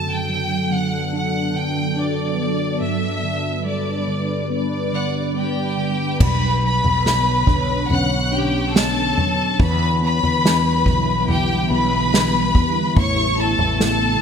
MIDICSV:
0, 0, Header, 1, 6, 480
1, 0, Start_track
1, 0, Key_signature, 2, "minor"
1, 0, Tempo, 842697
1, 1603, Time_signature, 4, 2, 24, 8
1, 8097, End_track
2, 0, Start_track
2, 0, Title_t, "Violin section"
2, 0, Program_c, 0, 48
2, 65, Note_on_c, 0, 79, 83
2, 416, Note_off_c, 0, 79, 0
2, 418, Note_on_c, 0, 78, 81
2, 645, Note_off_c, 0, 78, 0
2, 652, Note_on_c, 0, 78, 76
2, 872, Note_off_c, 0, 78, 0
2, 891, Note_on_c, 0, 79, 79
2, 1127, Note_off_c, 0, 79, 0
2, 1132, Note_on_c, 0, 74, 73
2, 1605, Note_on_c, 0, 76, 80
2, 1606, Note_off_c, 0, 74, 0
2, 2061, Note_off_c, 0, 76, 0
2, 2088, Note_on_c, 0, 74, 63
2, 2545, Note_off_c, 0, 74, 0
2, 2572, Note_on_c, 0, 74, 65
2, 2816, Note_on_c, 0, 78, 58
2, 2818, Note_on_c, 0, 90, 43
2, 2924, Note_off_c, 0, 78, 0
2, 2925, Note_off_c, 0, 90, 0
2, 3061, Note_on_c, 0, 79, 70
2, 3067, Note_on_c, 0, 67, 55
2, 3276, Note_off_c, 0, 74, 0
2, 3519, Note_off_c, 0, 79, 0
2, 3522, Note_off_c, 0, 67, 0
2, 3547, Note_on_c, 0, 83, 96
2, 3550, Note_on_c, 0, 71, 73
2, 3780, Note_off_c, 0, 83, 0
2, 3782, Note_off_c, 0, 71, 0
2, 3787, Note_on_c, 0, 83, 100
2, 3788, Note_on_c, 0, 71, 76
2, 4483, Note_off_c, 0, 71, 0
2, 4483, Note_off_c, 0, 83, 0
2, 4500, Note_on_c, 0, 78, 85
2, 4504, Note_on_c, 0, 90, 73
2, 4742, Note_off_c, 0, 78, 0
2, 4744, Note_off_c, 0, 90, 0
2, 4748, Note_on_c, 0, 79, 79
2, 4754, Note_on_c, 0, 67, 69
2, 4987, Note_off_c, 0, 79, 0
2, 4990, Note_off_c, 0, 67, 0
2, 4990, Note_on_c, 0, 81, 89
2, 4992, Note_on_c, 0, 69, 66
2, 5469, Note_on_c, 0, 83, 97
2, 5471, Note_off_c, 0, 81, 0
2, 5472, Note_off_c, 0, 69, 0
2, 5472, Note_on_c, 0, 71, 75
2, 5692, Note_off_c, 0, 83, 0
2, 5694, Note_off_c, 0, 71, 0
2, 5715, Note_on_c, 0, 83, 106
2, 5719, Note_on_c, 0, 71, 82
2, 6408, Note_off_c, 0, 83, 0
2, 6410, Note_off_c, 0, 71, 0
2, 6430, Note_on_c, 0, 79, 95
2, 6434, Note_on_c, 0, 67, 76
2, 6669, Note_off_c, 0, 79, 0
2, 6671, Note_off_c, 0, 67, 0
2, 6673, Note_on_c, 0, 71, 83
2, 6673, Note_on_c, 0, 83, 109
2, 7365, Note_off_c, 0, 71, 0
2, 7365, Note_off_c, 0, 83, 0
2, 7393, Note_on_c, 0, 85, 110
2, 7394, Note_on_c, 0, 73, 85
2, 7626, Note_off_c, 0, 73, 0
2, 7626, Note_off_c, 0, 85, 0
2, 7634, Note_on_c, 0, 81, 97
2, 7636, Note_on_c, 0, 69, 72
2, 7865, Note_off_c, 0, 81, 0
2, 7866, Note_off_c, 0, 69, 0
2, 7872, Note_on_c, 0, 69, 73
2, 7872, Note_on_c, 0, 81, 91
2, 8097, Note_off_c, 0, 69, 0
2, 8097, Note_off_c, 0, 81, 0
2, 8097, End_track
3, 0, Start_track
3, 0, Title_t, "Ambient pad"
3, 0, Program_c, 1, 92
3, 0, Note_on_c, 1, 54, 65
3, 0, Note_on_c, 1, 59, 57
3, 0, Note_on_c, 1, 62, 58
3, 0, Note_on_c, 1, 69, 69
3, 1586, Note_off_c, 1, 62, 0
3, 1587, Note_off_c, 1, 69, 0
3, 1588, Note_off_c, 1, 54, 0
3, 1599, Note_on_c, 1, 62, 62
3, 1601, Note_on_c, 1, 55, 66
3, 1601, Note_on_c, 1, 71, 75
3, 3516, Note_off_c, 1, 62, 0
3, 3517, Note_off_c, 1, 71, 0
3, 3518, Note_off_c, 1, 55, 0
3, 3519, Note_off_c, 1, 59, 0
3, 3527, Note_on_c, 1, 59, 61
3, 3529, Note_on_c, 1, 50, 74
3, 3533, Note_on_c, 1, 73, 61
3, 5446, Note_off_c, 1, 73, 0
3, 5462, Note_on_c, 1, 55, 62
3, 5465, Note_on_c, 1, 64, 81
3, 7359, Note_off_c, 1, 50, 0
3, 7363, Note_off_c, 1, 55, 0
3, 7384, Note_on_c, 1, 49, 77
3, 7385, Note_on_c, 1, 57, 66
3, 8097, Note_off_c, 1, 49, 0
3, 8097, Note_off_c, 1, 57, 0
3, 8097, Note_off_c, 1, 59, 0
3, 8097, Note_off_c, 1, 64, 0
3, 8097, End_track
4, 0, Start_track
4, 0, Title_t, "Tine electric piano"
4, 0, Program_c, 2, 4
4, 0, Control_c, 2, 64, 127
4, 0, Note_on_c, 2, 42, 56
4, 0, Note_on_c, 2, 50, 43
4, 165, Note_on_c, 2, 54, 46
4, 394, Note_off_c, 2, 50, 0
4, 401, Note_on_c, 2, 50, 42
4, 643, Note_on_c, 2, 62, 50
4, 876, Note_off_c, 2, 50, 0
4, 883, Note_on_c, 2, 50, 45
4, 1098, Note_off_c, 2, 54, 0
4, 1111, Note_off_c, 2, 62, 0
4, 1118, Note_on_c, 2, 62, 48
4, 1349, Note_off_c, 2, 50, 0
4, 1356, Note_on_c, 2, 50, 44
4, 1582, Note_off_c, 2, 42, 0
4, 1585, Note_off_c, 2, 62, 0
4, 1592, Note_off_c, 2, 50, 0
4, 1599, Note_on_c, 2, 43, 57
4, 1610, Control_c, 2, 64, 0
4, 1703, Control_c, 2, 64, 127
4, 1839, Note_on_c, 2, 50, 41
4, 2080, Note_on_c, 2, 55, 43
4, 2313, Note_off_c, 2, 50, 0
4, 2320, Note_on_c, 2, 50, 40
4, 2562, Note_on_c, 2, 59, 48
4, 2797, Note_off_c, 2, 50, 0
4, 2804, Note_on_c, 2, 50, 40
4, 3028, Note_off_c, 2, 55, 0
4, 3037, Note_off_c, 2, 59, 0
4, 3043, Note_on_c, 2, 59, 44
4, 3284, Note_off_c, 2, 50, 0
4, 3291, Note_on_c, 2, 50, 39
4, 3513, Note_off_c, 2, 43, 0
4, 3519, Note_off_c, 2, 59, 0
4, 3528, Note_off_c, 2, 50, 0
4, 3535, Note_on_c, 2, 47, 70
4, 3545, Control_c, 2, 64, 0
4, 3632, Control_c, 2, 64, 127
4, 3777, Note_on_c, 2, 54, 50
4, 4013, Note_on_c, 2, 59, 56
4, 4251, Note_on_c, 2, 62, 51
4, 4502, Note_on_c, 2, 61, 59
4, 4719, Note_off_c, 2, 54, 0
4, 4736, Note_off_c, 2, 62, 0
4, 4743, Note_on_c, 2, 62, 54
4, 4958, Note_off_c, 2, 59, 0
4, 4983, Note_on_c, 2, 59, 54
4, 5224, Note_on_c, 2, 54, 52
4, 5444, Note_off_c, 2, 47, 0
4, 5445, Note_off_c, 2, 61, 0
4, 5446, Note_off_c, 2, 62, 0
4, 5452, Note_off_c, 2, 59, 0
4, 5459, Note_off_c, 2, 54, 0
4, 5464, Note_on_c, 2, 52, 68
4, 5475, Control_c, 2, 64, 0
4, 5577, Control_c, 2, 64, 127
4, 5704, Note_on_c, 2, 59, 52
4, 5940, Note_off_c, 2, 52, 0
4, 5946, Note_on_c, 2, 52, 54
4, 6183, Note_off_c, 2, 59, 0
4, 6189, Note_on_c, 2, 59, 52
4, 6425, Note_off_c, 2, 52, 0
4, 6432, Note_on_c, 2, 52, 60
4, 6663, Note_off_c, 2, 59, 0
4, 6670, Note_on_c, 2, 59, 54
4, 6904, Note_off_c, 2, 52, 0
4, 6911, Note_on_c, 2, 52, 57
4, 7139, Note_off_c, 2, 59, 0
4, 7146, Note_on_c, 2, 59, 53
4, 7373, Note_off_c, 2, 52, 0
4, 7378, Note_off_c, 2, 59, 0
4, 7384, Note_on_c, 2, 57, 67
4, 7393, Control_c, 2, 64, 0
4, 7505, Control_c, 2, 64, 127
4, 7622, Note_on_c, 2, 64, 52
4, 7849, Note_off_c, 2, 57, 0
4, 7856, Note_on_c, 2, 57, 57
4, 8091, Note_off_c, 2, 64, 0
4, 8097, Note_off_c, 2, 57, 0
4, 8097, End_track
5, 0, Start_track
5, 0, Title_t, "Fretless electric bass"
5, 0, Program_c, 3, 35
5, 3535, Note_on_c, 3, 35, 95
5, 3875, Note_off_c, 3, 35, 0
5, 3899, Note_on_c, 3, 35, 82
5, 4238, Note_off_c, 3, 35, 0
5, 4256, Note_on_c, 3, 35, 88
5, 4482, Note_off_c, 3, 35, 0
5, 4500, Note_on_c, 3, 35, 85
5, 5203, Note_off_c, 3, 35, 0
5, 5467, Note_on_c, 3, 40, 116
5, 5806, Note_off_c, 3, 40, 0
5, 5829, Note_on_c, 3, 40, 89
5, 6166, Note_off_c, 3, 40, 0
5, 6188, Note_on_c, 3, 35, 85
5, 6645, Note_off_c, 3, 35, 0
5, 6666, Note_on_c, 3, 35, 93
5, 7124, Note_off_c, 3, 35, 0
5, 7385, Note_on_c, 3, 33, 104
5, 7718, Note_off_c, 3, 33, 0
5, 7738, Note_on_c, 3, 33, 86
5, 8072, Note_off_c, 3, 33, 0
5, 8097, End_track
6, 0, Start_track
6, 0, Title_t, "Drums"
6, 3534, Note_on_c, 9, 36, 103
6, 3534, Note_on_c, 9, 43, 106
6, 3534, Note_on_c, 9, 49, 84
6, 3591, Note_off_c, 9, 36, 0
6, 3591, Note_off_c, 9, 43, 0
6, 3591, Note_off_c, 9, 49, 0
6, 3898, Note_on_c, 9, 43, 65
6, 3955, Note_off_c, 9, 43, 0
6, 4023, Note_on_c, 9, 38, 100
6, 4080, Note_off_c, 9, 38, 0
6, 4256, Note_on_c, 9, 36, 79
6, 4256, Note_on_c, 9, 43, 60
6, 4313, Note_off_c, 9, 36, 0
6, 4313, Note_off_c, 9, 43, 0
6, 4499, Note_on_c, 9, 43, 64
6, 4556, Note_off_c, 9, 43, 0
6, 4989, Note_on_c, 9, 38, 111
6, 5046, Note_off_c, 9, 38, 0
6, 5227, Note_on_c, 9, 43, 67
6, 5284, Note_off_c, 9, 43, 0
6, 5466, Note_on_c, 9, 43, 107
6, 5467, Note_on_c, 9, 36, 114
6, 5523, Note_off_c, 9, 43, 0
6, 5524, Note_off_c, 9, 36, 0
6, 5830, Note_on_c, 9, 43, 63
6, 5887, Note_off_c, 9, 43, 0
6, 5956, Note_on_c, 9, 38, 106
6, 6013, Note_off_c, 9, 38, 0
6, 6185, Note_on_c, 9, 43, 61
6, 6186, Note_on_c, 9, 36, 80
6, 6242, Note_off_c, 9, 43, 0
6, 6243, Note_off_c, 9, 36, 0
6, 6427, Note_on_c, 9, 43, 64
6, 6484, Note_off_c, 9, 43, 0
6, 6914, Note_on_c, 9, 38, 108
6, 6971, Note_off_c, 9, 38, 0
6, 7148, Note_on_c, 9, 36, 86
6, 7149, Note_on_c, 9, 43, 61
6, 7205, Note_off_c, 9, 36, 0
6, 7206, Note_off_c, 9, 43, 0
6, 7385, Note_on_c, 9, 36, 105
6, 7385, Note_on_c, 9, 43, 109
6, 7442, Note_off_c, 9, 36, 0
6, 7442, Note_off_c, 9, 43, 0
6, 7740, Note_on_c, 9, 43, 64
6, 7797, Note_off_c, 9, 43, 0
6, 7863, Note_on_c, 9, 38, 108
6, 7920, Note_off_c, 9, 38, 0
6, 8097, End_track
0, 0, End_of_file